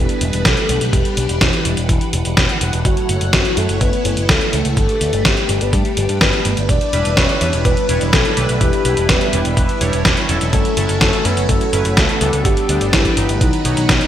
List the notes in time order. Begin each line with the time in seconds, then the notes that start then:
Already playing: G3 D4 E4 B4
0.09 closed hi-hat
0.21 E1, closed hi-hat
0.33 E1, closed hi-hat
0.45 B1 A4, kick, snare, closed hi-hat
0.57 closed hi-hat
0.69 B1, closed hi-hat
0.81 B1, closed hi-hat
0.93 E1 G4 F#5, kick, closed hi-hat
1.05 closed hi-hat
1.17 B1, closed hi-hat
1.29 E1, closed hi-hat
1.41 E1 E4, kick, snare, closed hi-hat
1.53 closed hi-hat
1.65 E1, closed hi-hat
1.77 E1, closed hi-hat
1.89 E1, kick, closed hi-hat
2.01 closed hi-hat
2.13 E1, closed hi-hat
2.25 E1, closed hi-hat
2.37 E1, kick, snare, closed hi-hat
2.49 closed hi-hat
2.61 E1, closed hi-hat
2.73 E1, closed hi-hat
2.85 F#1 A3 E4 F#4 C#5, kick, closed hi-hat
2.97 closed hi-hat
3.09 F#1, closed hi-hat
3.21 F#1, closed hi-hat
3.33 F#1 F#4, kick, snare, closed hi-hat
3.45 closed hi-hat
3.57 F#2 A4, closed hi-hat
3.69 F#1, closed hi-hat
3.81 F#1 B4, kick, closed hi-hat
3.93 closed hi-hat
4.05 F#1, closed hi-hat
4.17 F#1, closed hi-hat
4.29 C#2 A4, kick, snare, closed hi-hat
4.41 closed hi-hat
4.53 C#2, closed hi-hat
4.65 C#2, closed hi-hat
4.77 G1 D4 G4 A4 B4, kick, closed hi-hat
4.89 closed hi-hat
5.01 D2, closed hi-hat
5.13 G1, closed hi-hat
5.25 G1 G4, kick, snare, closed hi-hat
5.37 closed hi-hat
5.49 G1, closed hi-hat
5.61 G1 B4, closed hi-hat
5.73 G2 G4, kick, closed hi-hat
5.85 closed hi-hat
5.97 G1, closed hi-hat
6.09 G2, closed hi-hat
6.21 G1 B4, kick, snare, closed hi-hat
6.33 closed hi-hat
6.45 G1, closed hi-hat
6.57 G1, closed hi-hat
6.69 E1 G3 E4 D5, kick, closed hi-hat
6.81 closed hi-hat
6.93 E1 G3 D4 E4 B4, closed hi-hat
7.05 E1, closed hi-hat
7.17 E1 C#5, kick, snare, closed hi-hat
7.29 closed hi-hat
7.41 E2 G3 D4 E4 B4, closed hi-hat
7.53 E1, closed hi-hat
7.65 E1 B4, kick, closed hi-hat
7.77 closed hi-hat
7.89 E1 G3 D4 E4 C#5, closed hi-hat
8.01 E1, closed hi-hat
8.13 B1 A4, kick, snare, closed hi-hat
8.25 closed hi-hat
8.37 B1 G3 D4 E4 B4, closed hi-hat
8.49 B1, closed hi-hat
8.61 E1 G4, kick, closed hi-hat
8.73 closed hi-hat
8.85 B1 G3 D4 E4 B4, closed hi-hat
8.97 E1, closed hi-hat
9.09 E1 B4, kick, snare, closed hi-hat
9.21 closed hi-hat
9.33 E1 G3 D4 E4 B4, closed hi-hat
9.45 E1, closed hi-hat
9.57 E1, kick, closed hi-hat
9.69 closed hi-hat
9.81 E1 G3 D4 E4 C#5, closed hi-hat
9.93 E1, closed hi-hat
10.05 E1, kick, snare, closed hi-hat
10.17 closed hi-hat
10.29 E1 F#3 C#4 E4 A4, closed hi-hat
10.41 E1, closed hi-hat
10.53 F#1 A3 F#4 A4 C#5, kick, closed hi-hat
10.65 closed hi-hat
10.77 F#1 F#3 C#4 E4 A4, closed hi-hat
10.89 F#1, closed hi-hat
11.01 F#1 A4, kick, snare, closed hi-hat
11.13 closed hi-hat
11.25 F#2 F#3 C#4 E4 A4 B4, closed hi-hat
11.37 F#1, closed hi-hat
11.49 F#1 A4, kick, closed hi-hat
11.61 closed hi-hat
11.73 F#1 F#3 C#4 E4 B4, closed hi-hat
11.85 F#1, closed hi-hat
11.97 C#2 A4, kick, snare, closed hi-hat
12.09 closed hi-hat
12.21 C#2 G3 B3 D4 A4, closed hi-hat
12.33 C#2, closed hi-hat
12.45 G1 D4 G4 B4, kick, closed hi-hat
12.57 closed hi-hat
12.69 D2 G3 B3 D4 A4, closed hi-hat
12.81 G1, closed hi-hat
12.93 G1 E4, kick, snare, closed hi-hat
13.05 kick, closed hi-hat
13.17 G1 F#3 B3 D#4 B4, closed hi-hat
13.29 G1, closed hi-hat
13.41 B1 F#3 B3 D#4, kick, closed hi-hat, swell
13.53 closed hi-hat
13.65 B1 F#3 B3 D#4 C#5, closed hi-hat
13.77 B1, closed hi-hat
13.89 B1, kick, snare, closed hi-hat
14.01 closed hi-hat